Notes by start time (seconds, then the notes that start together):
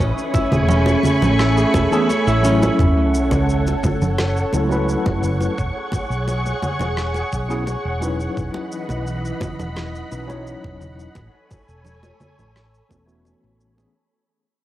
Already playing: C#4 E4 C#5
0.00 A1 A3 C#4 G#5 B5 C#6, kick, shaker
0.18 shaker
0.34 E4, kick, muted conga, shaker
0.52 E1 G#4, high conga, low conga, shaker
0.68 C#4, low conga, shaker
0.86 muted conga, high conga, shaker
1.03 high conga, low conga, shaker
1.22 A1, muted conga, low conga, shaker
1.38 E4, cross-stick, shaker
1.57 G#4, shaker
1.74 E1 A4, kick, muted conga, shaker
1.91 E3 A3 B3 C#4 G#4 A4, shaker
2.09 C#5, muted conga, shaker
2.27 A1 E4, shaker
2.42 F#3 A3 C#4 E4, shaker
2.62 E4, muted conga, shaker
2.78 F#1 A4 C#5 F#5 C#6, kick, sub drop, muted conga, shaker
3.14 shaker
3.31 C#2, muted conga, high conga, shaker
3.49 shaker
3.67 muted conga, shaker
3.83 kick, high conga, low conga, shaker
4.01 F#1, low conga, shaker
4.18 cross-stick, muted conga, shaker
4.37 shaker
4.53 C#2 F#3 A3 C#4 E4 A4, muted conga, shaker
4.69 F#3 A3 C#4 E4 B4, shaker
4.89 shaker
5.06 F#1, kick, muted conga
5.23 low conga, shaker
5.41 muted conga, shaker
5.57 E1 G#4, kick, shaker
5.92 kick, muted conga, shaker
6.10 B1, shaker
6.28 muted conga, shaker
6.46 high conga, shaker
6.62 high conga, low conga, shaker
6.79 E1, muted conga, low conga, shaker
6.97 cross-stick, shaker
7.14 muted conga, shaker
7.33 B1, kick, shaker
7.49 F#3 B3 C#4 E4 G#4, shaker
7.67 muted conga, shaker
7.85 E1
8.00 F#3 C#4 D#4 E4 B4, muted conga, shaker
8.20 shaker
8.36 E1 E3 D#5 B5, kick, shaker
8.54 muted conga
8.72 shaker
8.89 B1, muted conga, high conga, shaker
9.07 shaker
9.25 shaker
9.41 kick, muted conga, high conga, low conga, shaker
9.59 E1, low conga, shaker
9.76 cross-stick, muted conga, shaker
9.95 shaker
10.11 B1 F#3 C#4 D#4 E4 B4, shaker
10.27 F#3 C#4 D#4 E4 C#5, muted conga, shaker
10.47 shaker
10.64 E1, kick, muted conga
10.81 low conga, shaker
10.99 shaker
11.15 A1 A4 C#5 G#5, kick, muted conga, shaker
11.51 kick, muted conga, shaker
11.68 E1, shaker
11.85 low conga, shaker
12.03 muted conga, high conga, shaker
12.20 high conga, low conga, shaker
12.39 A1, muted conga, low conga, shaker
12.56 cross-stick, shaker
12.74 shaker
12.89 E1 E3 A3 B3 C#4 A4, kick, muted conga, shaker
13.06 E3 A3 B3 C#4 F#4, shaker
13.25 muted conga, shaker
13.44 A1
13.61 shaker
13.76 E3 A3 B3 C#4 G#4, muted conga, shaker